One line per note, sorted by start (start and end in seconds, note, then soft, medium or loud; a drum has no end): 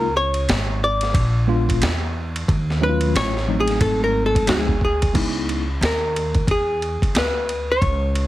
0.00 0.45 C#2 loud
0.00 0.16 A#4 loud
0.17 0.83 C#5 loud
0.34 ride medium
0.49 1.12 G#1 medium
0.49 snare loud
0.49 hi-hat pedal medium
0.49 ride medium
0.84 1.79 D5 loud
1.01 snare soft
1.01 ride medium
1.14 1.78 A#1 medium
1.14 kick loud
1.14 ride medium
1.47 1.89 G#3 medium
1.47 1.89 B3 medium
1.47 1.89 D4 medium
1.47 1.90 F4 medium
1.69 kick medium
1.69 ride medium
1.82 2.45 E2 medium
1.82 snare loud
1.82 hi-hat pedal medium
1.82 ride medium
2.36 ride medium
2.48 3.12 D#2 loud
2.48 kick loud
2.48 ride medium
2.70 snare soft
2.81 3.31 F#3 medium
2.81 3.31 A3 medium
2.81 3.31 C#4 medium
2.81 2.90 D#4 medium
2.81 3.13 B4 loud
2.89 3.35 F4 medium
3.01 ride medium
3.15 3.78 A1 medium
3.15 3.61 C#5 loud
3.15 snare loud
3.15 hi-hat pedal medium
3.15 ride medium
3.37 snare soft
3.48 3.56 F3 soft
3.48 4.43 A3 medium
3.48 4.43 C4 medium
3.48 4.43 D#4 medium
3.54 4.46 F#3 medium
3.60 3.81 G#4 medium
3.68 snare soft
3.68 ride medium
3.81 4.44 G#1 loud
3.81 4.03 A4 loud
3.81 kick loud
3.81 ride medium
4.04 4.26 A#4 medium
4.26 4.49 A4 medium
4.35 kick medium
4.35 ride medium
4.47 5.12 D2 medium
4.47 4.73 F#3 medium
4.47 4.73 A3 medium
4.47 4.73 C4 medium
4.47 4.74 D#4 medium
4.47 4.59 F#4 medium
4.47 4.83 G#4 medium
4.47 snare loud
4.47 hi-hat pedal medium
4.47 ride medium
4.68 kick medium
4.81 5.85 G#4 medium
4.81 kick loud
5.02 kick medium
5.02 ride medium
5.13 5.78 C#2 loud
5.13 5.63 G#3 medium
5.13 5.64 B3 medium
5.13 5.64 D#4 medium
5.13 5.65 E4 medium
5.13 kick loud
5.13 crash medium
5.13 ride medium
5.49 ride medium
5.81 6.44 D#2 medium
5.81 snare loud
5.81 hi-hat pedal medium
5.81 ride medium
5.85 6.51 A#4 medium
6.16 ride medium
6.35 kick medium
6.35 ride soft
6.47 6.99 E2 medium
6.47 7.18 G#4 medium
6.47 kick medium
6.47 ride medium
6.82 ride medium
7.02 muted upright bass stroke soft
7.02 kick medium
7.02 ride soft
7.15 7.78 D2 medium
7.15 7.72 B4 medium
7.15 snare loud
7.15 hi-hat pedal medium
7.15 ride medium
7.49 ride medium
7.72 8.27 C#5 medium
7.81 8.27 C#2 loud
7.81 kick loud
7.81 ride medium
8.15 ride medium